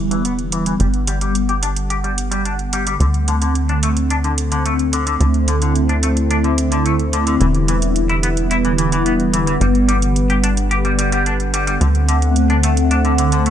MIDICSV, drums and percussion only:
0, 0, Header, 1, 2, 480
1, 0, Start_track
1, 0, Key_signature, 1, "major"
1, 0, Tempo, 550459
1, 698, Time_signature, 4, 2, 24, 8
1, 11773, End_track
2, 0, Start_track
2, 0, Title_t, "Drums"
2, 98, Note_on_c, 9, 42, 49
2, 185, Note_off_c, 9, 42, 0
2, 217, Note_on_c, 9, 42, 48
2, 305, Note_off_c, 9, 42, 0
2, 337, Note_on_c, 9, 42, 25
2, 424, Note_off_c, 9, 42, 0
2, 456, Note_on_c, 9, 42, 84
2, 543, Note_off_c, 9, 42, 0
2, 577, Note_on_c, 9, 42, 51
2, 664, Note_off_c, 9, 42, 0
2, 697, Note_on_c, 9, 42, 50
2, 784, Note_off_c, 9, 42, 0
2, 816, Note_on_c, 9, 42, 25
2, 904, Note_off_c, 9, 42, 0
2, 937, Note_on_c, 9, 42, 86
2, 1024, Note_off_c, 9, 42, 0
2, 1058, Note_on_c, 9, 42, 49
2, 1145, Note_off_c, 9, 42, 0
2, 1178, Note_on_c, 9, 42, 49
2, 1266, Note_off_c, 9, 42, 0
2, 1299, Note_on_c, 9, 42, 25
2, 1386, Note_off_c, 9, 42, 0
2, 1418, Note_on_c, 9, 42, 87
2, 1506, Note_off_c, 9, 42, 0
2, 1539, Note_on_c, 9, 42, 50
2, 1626, Note_off_c, 9, 42, 0
2, 1659, Note_on_c, 9, 42, 49
2, 1746, Note_off_c, 9, 42, 0
2, 1781, Note_on_c, 9, 42, 25
2, 1868, Note_off_c, 9, 42, 0
2, 1900, Note_on_c, 9, 42, 85
2, 1987, Note_off_c, 9, 42, 0
2, 2020, Note_on_c, 9, 42, 52
2, 2107, Note_off_c, 9, 42, 0
2, 2140, Note_on_c, 9, 42, 49
2, 2228, Note_off_c, 9, 42, 0
2, 2260, Note_on_c, 9, 42, 26
2, 2347, Note_off_c, 9, 42, 0
2, 2379, Note_on_c, 9, 42, 86
2, 2466, Note_off_c, 9, 42, 0
2, 2499, Note_on_c, 9, 42, 52
2, 2587, Note_off_c, 9, 42, 0
2, 2620, Note_on_c, 9, 42, 49
2, 2707, Note_off_c, 9, 42, 0
2, 2739, Note_on_c, 9, 42, 24
2, 2826, Note_off_c, 9, 42, 0
2, 2859, Note_on_c, 9, 42, 85
2, 2946, Note_off_c, 9, 42, 0
2, 2979, Note_on_c, 9, 42, 48
2, 3066, Note_off_c, 9, 42, 0
2, 3099, Note_on_c, 9, 42, 48
2, 3186, Note_off_c, 9, 42, 0
2, 3219, Note_on_c, 9, 42, 25
2, 3306, Note_off_c, 9, 42, 0
2, 3338, Note_on_c, 9, 42, 87
2, 3425, Note_off_c, 9, 42, 0
2, 3459, Note_on_c, 9, 42, 49
2, 3546, Note_off_c, 9, 42, 0
2, 3579, Note_on_c, 9, 42, 48
2, 3666, Note_off_c, 9, 42, 0
2, 3699, Note_on_c, 9, 42, 25
2, 3786, Note_off_c, 9, 42, 0
2, 3818, Note_on_c, 9, 42, 88
2, 3905, Note_off_c, 9, 42, 0
2, 3939, Note_on_c, 9, 42, 49
2, 4026, Note_off_c, 9, 42, 0
2, 4060, Note_on_c, 9, 42, 49
2, 4147, Note_off_c, 9, 42, 0
2, 4180, Note_on_c, 9, 42, 25
2, 4267, Note_off_c, 9, 42, 0
2, 4298, Note_on_c, 9, 42, 85
2, 4386, Note_off_c, 9, 42, 0
2, 4419, Note_on_c, 9, 42, 50
2, 4506, Note_off_c, 9, 42, 0
2, 4539, Note_on_c, 9, 42, 46
2, 4627, Note_off_c, 9, 42, 0
2, 4658, Note_on_c, 9, 42, 24
2, 4745, Note_off_c, 9, 42, 0
2, 4777, Note_on_c, 9, 42, 81
2, 4864, Note_off_c, 9, 42, 0
2, 4898, Note_on_c, 9, 42, 47
2, 4985, Note_off_c, 9, 42, 0
2, 5018, Note_on_c, 9, 42, 47
2, 5106, Note_off_c, 9, 42, 0
2, 5138, Note_on_c, 9, 42, 24
2, 5226, Note_off_c, 9, 42, 0
2, 5257, Note_on_c, 9, 42, 83
2, 5344, Note_off_c, 9, 42, 0
2, 5378, Note_on_c, 9, 42, 48
2, 5466, Note_off_c, 9, 42, 0
2, 5498, Note_on_c, 9, 42, 46
2, 5586, Note_off_c, 9, 42, 0
2, 5618, Note_on_c, 9, 42, 24
2, 5706, Note_off_c, 9, 42, 0
2, 5738, Note_on_c, 9, 42, 85
2, 5825, Note_off_c, 9, 42, 0
2, 5857, Note_on_c, 9, 42, 49
2, 5945, Note_off_c, 9, 42, 0
2, 5979, Note_on_c, 9, 42, 46
2, 6066, Note_off_c, 9, 42, 0
2, 6099, Note_on_c, 9, 42, 24
2, 6187, Note_off_c, 9, 42, 0
2, 6218, Note_on_c, 9, 42, 83
2, 6306, Note_off_c, 9, 42, 0
2, 6338, Note_on_c, 9, 42, 48
2, 6425, Note_off_c, 9, 42, 0
2, 6458, Note_on_c, 9, 42, 45
2, 6545, Note_off_c, 9, 42, 0
2, 6579, Note_on_c, 9, 42, 23
2, 6667, Note_off_c, 9, 42, 0
2, 6700, Note_on_c, 9, 42, 78
2, 6787, Note_off_c, 9, 42, 0
2, 6820, Note_on_c, 9, 42, 47
2, 6907, Note_off_c, 9, 42, 0
2, 6939, Note_on_c, 9, 42, 46
2, 7026, Note_off_c, 9, 42, 0
2, 7058, Note_on_c, 9, 42, 23
2, 7146, Note_off_c, 9, 42, 0
2, 7179, Note_on_c, 9, 42, 80
2, 7266, Note_off_c, 9, 42, 0
2, 7300, Note_on_c, 9, 42, 46
2, 7387, Note_off_c, 9, 42, 0
2, 7419, Note_on_c, 9, 42, 46
2, 7506, Note_off_c, 9, 42, 0
2, 7539, Note_on_c, 9, 42, 24
2, 7627, Note_off_c, 9, 42, 0
2, 7660, Note_on_c, 9, 42, 79
2, 7747, Note_off_c, 9, 42, 0
2, 7781, Note_on_c, 9, 42, 47
2, 7868, Note_off_c, 9, 42, 0
2, 7900, Note_on_c, 9, 42, 46
2, 7987, Note_off_c, 9, 42, 0
2, 8020, Note_on_c, 9, 42, 23
2, 8107, Note_off_c, 9, 42, 0
2, 8140, Note_on_c, 9, 42, 83
2, 8228, Note_off_c, 9, 42, 0
2, 8260, Note_on_c, 9, 42, 46
2, 8347, Note_off_c, 9, 42, 0
2, 8381, Note_on_c, 9, 42, 46
2, 8468, Note_off_c, 9, 42, 0
2, 8501, Note_on_c, 9, 42, 23
2, 8589, Note_off_c, 9, 42, 0
2, 8621, Note_on_c, 9, 42, 79
2, 8708, Note_off_c, 9, 42, 0
2, 8740, Note_on_c, 9, 42, 46
2, 8827, Note_off_c, 9, 42, 0
2, 8860, Note_on_c, 9, 42, 46
2, 8948, Note_off_c, 9, 42, 0
2, 8980, Note_on_c, 9, 42, 23
2, 9067, Note_off_c, 9, 42, 0
2, 9100, Note_on_c, 9, 42, 82
2, 9187, Note_off_c, 9, 42, 0
2, 9219, Note_on_c, 9, 42, 46
2, 9306, Note_off_c, 9, 42, 0
2, 9340, Note_on_c, 9, 42, 44
2, 9427, Note_off_c, 9, 42, 0
2, 9460, Note_on_c, 9, 42, 24
2, 9547, Note_off_c, 9, 42, 0
2, 9580, Note_on_c, 9, 42, 79
2, 9668, Note_off_c, 9, 42, 0
2, 9700, Note_on_c, 9, 42, 45
2, 9787, Note_off_c, 9, 42, 0
2, 9820, Note_on_c, 9, 42, 45
2, 9908, Note_off_c, 9, 42, 0
2, 9940, Note_on_c, 9, 42, 23
2, 10028, Note_off_c, 9, 42, 0
2, 10061, Note_on_c, 9, 42, 81
2, 10148, Note_off_c, 9, 42, 0
2, 10179, Note_on_c, 9, 42, 48
2, 10266, Note_off_c, 9, 42, 0
2, 10299, Note_on_c, 9, 42, 48
2, 10387, Note_off_c, 9, 42, 0
2, 10419, Note_on_c, 9, 42, 24
2, 10506, Note_off_c, 9, 42, 0
2, 10538, Note_on_c, 9, 42, 83
2, 10626, Note_off_c, 9, 42, 0
2, 10658, Note_on_c, 9, 42, 46
2, 10745, Note_off_c, 9, 42, 0
2, 10778, Note_on_c, 9, 42, 48
2, 10865, Note_off_c, 9, 42, 0
2, 10899, Note_on_c, 9, 42, 24
2, 10986, Note_off_c, 9, 42, 0
2, 11017, Note_on_c, 9, 42, 86
2, 11104, Note_off_c, 9, 42, 0
2, 11137, Note_on_c, 9, 42, 49
2, 11224, Note_off_c, 9, 42, 0
2, 11257, Note_on_c, 9, 42, 46
2, 11344, Note_off_c, 9, 42, 0
2, 11377, Note_on_c, 9, 42, 25
2, 11464, Note_off_c, 9, 42, 0
2, 11496, Note_on_c, 9, 42, 82
2, 11583, Note_off_c, 9, 42, 0
2, 11616, Note_on_c, 9, 42, 50
2, 11703, Note_off_c, 9, 42, 0
2, 11737, Note_on_c, 9, 42, 48
2, 11773, Note_off_c, 9, 42, 0
2, 11773, End_track
0, 0, End_of_file